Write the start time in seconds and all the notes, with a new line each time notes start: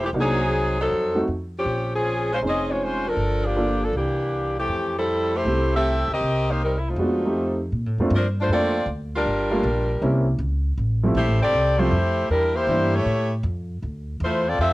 0.04 E3 A3 C4 G4
0.13 C2 A#3 D4 D#4 F#4
0.20 F#3 C4 D#4 G#4
0.81 F#3 C4 D#4 A4
0.90 F2
1.15 A3 C4 D#4 F#4
1.28 F2
1.57 F3 C4 C#4 G4
1.65 A#1
1.94 F3 C4 C#4 G#4
2.33 G#3 C#4 F4 C5
2.42 F1 C4 C#4 D#4 G#4
2.46 C#4 G#4 C5 D#5
2.70 G#3 C4 F4 C#5
2.83 G#3 C#4 F4 C5
3.07 F3 D4 A4 A#4
3.17 G1
3.45 F3 A#3 D4 G4
3.56 A#3 D4 F4 A4
3.83 F3 A#3 D4 A4
3.93 C2 E3 A#3 D4 G4
4.58 E3 A3 C4 G4
4.68 F2
4.98 G3 C4 E4 A4
5.35 A3 E4 G4 C5
5.45 C2 A3 C4 E4 G4
5.75 C4 G4 A4 E5
6.08 C#2
6.13 C4 G4 A#4 D#5
6.21 C2
6.50 A#3 D#4 G4 C5
6.63 G3 C4 D#4 A#4
6.78 E4
6.88 A3 C4 D#4 F4
6.96 F2 G#3 B3 D4 F#4
7.25 A3 C4 D#4 G4
7.72 A#2
7.86 A2
7.98 F2 A3 A#3 C4 D4 F4
8.10 G2
8.15 F3 C4 D4 A#4
8.40 A3 D4 F4 C5
8.48 F2 A3 A#3 C4 D4 F4 A4
8.53 C4 F4 D5
8.86 D2
9.15 G3 D4 F4 A#4
9.26 G1
9.51 G3 A3 A#3 D4 F4
9.63 A#1
10.01 C2 G3 A#3 C4 C#4 E4
10.39 C#2
10.78 A1
11.03 F3 G3 A3 C4 E4
11.15 A#1 A3 E4 G4 C5
11.27 A1
11.39 F1 C4 G4 A4 D5
11.53 C2
11.78 F3 G3 A3 C4 E4 F4 G4 C5
11.91 F2
12.29 E2 G3 D4 E4 A#4
12.54 A#3 E4 G4 C5
12.67 G2 E3 G3 A#3 D4 E4
12.94 A3 E4 G4 C#5
13.05 A2
13.43 F2
13.82 D2
14.20 E2 A3 E4 F4 C5
14.47 C4 F4 A4 D5
14.58 F2 C4 F4 A4 E5